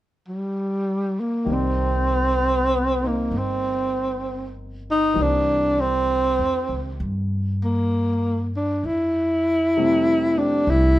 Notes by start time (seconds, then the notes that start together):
0.28 G3
1.20 A#3
1.44 C2 D#3 G3 A#3
1.49 C4 D5
1.53 C4
3.01 A#3 C4 D#4
3.07 A#3
3.31 G1
3.37 C4
4.91 D#4
5.13 C2 E3 G3
5.18 A#3 C4 D4
5.24 D4
5.80 C4
6.39 E2
6.69 C#2
7.00 G2
7.64 A#3
8.56 D4
8.84 F2 E4
9.77 C3 G3 A3 C4 E4
10.36 A3 C4 D4 G4
10.67 C2 E4